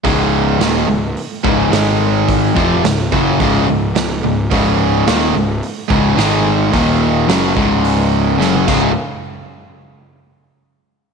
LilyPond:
<<
  \new Staff \with { instrumentName = "Overdriven electric guitar" } { \clef bass \time 4/4 \key des \major \tempo 4 = 108 <des, aes, des>4 <ees, bes, ees>8 <des, aes,>8 r8 <des, aes, des>8 <aes, ees aes>4~ | <aes, ees aes>8 <f, c f>8 <des, aes,>8 <ges, des ges>8 <des, aes, des>8 <des, aes,>8 <des, aes,>8 <des, aes,>8 | <des, aes, des>4 <ees, bes, ees>8 <des, aes,>8 r8 <des, aes, des>8 <aes, ees aes>4 | <ees, bes, ees>4 <ges, des ges>8 <des, aes, des>4. <ges, des ges>8 <des, aes, des aes f'>8 |
r1 | }
  \new Staff \with { instrumentName = "Overdriven electric guitar" } { \clef bass \time 4/4 \key des \major <des, aes, des>4 <ees, bes, ees>8 <des, aes,>8 r8 <des, aes, des>8 <aes, ees aes>4~ | <aes, ees aes>8 <f, c f>8 <des, aes,>8 <ges, des ges>8 <des, aes, des>8 <des, aes,>8 <des, aes,>8 <des, aes,>8 | <des, aes, des>4 <ees, bes, ees>8 <des, aes,>8 r8 <des, aes, des>8 <aes, ees aes>4 | <ees, bes, ees>4 <ges, des ges>8 <des, aes, des>4. <ges, des ges>8 <des, aes, des>8 |
r1 | }
  \new Staff \with { instrumentName = "Picked electric bass" } { \clef bass \time 4/4 \key des \major des,,4 ees,,8 des,,8 r8 des,,8 aes,,4~ | aes,,8 f,,8 des,,8 ges,,8 des,,8 des,,8 des,,8 des,,8 | des,,4 ees,,8 des,,8 r8 des,,8 aes,,4 | ees,,4 ges,,8 des,,4. ges,,8 des,,8 |
r1 | }
  \new DrumStaff \with { instrumentName = "Drums" } \drummode { \time 4/4 <hho bd>4 <hho sn>4 hho8 bd8 <hho sn>4 | <hho bd>8 bd8 <hho sn>8 bd8 <hho bd>4 <hho sn>4 | <hho bd>4 <hho sn>4 hho8 bd8 <hho sn>4 | <hho bd>4 <hho sn>8 bd8 hho4 sn16 tommh16 <cymc bd>8 |
r4 r4 r4 r4 | }
>>